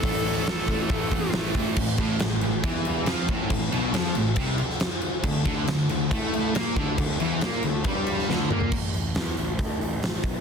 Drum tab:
CC |----------------|x-x-x-x-x-x-x-x-|x-x-x-x-x-x-x-x-|x-x-x-x-x-x-x-x-|
HH |o-o-o-o-o-o-o-o-|----------------|----------------|----------------|
SD |----oo------o---|----o-------o---|----o------oo---|----o-------o---|
T2 |----------------|----------------|----------------|----------------|
FT |----------------|----------------|----------------|----------------|
BD |o-----o-o-o---o-|o-o-----o-----o-|o-------o-------|o-o-----o-----o-|

CC |x-x-x-x-x-x-----|x---------------|
HH |----------------|--o-o-o-o-o-o-o-|
SD |----o------oo---|----o-------o---|
T2 |--------------o-|----------------|
FT |---------------o|----------------|
BD |o-------o-------|o-------o-----o-|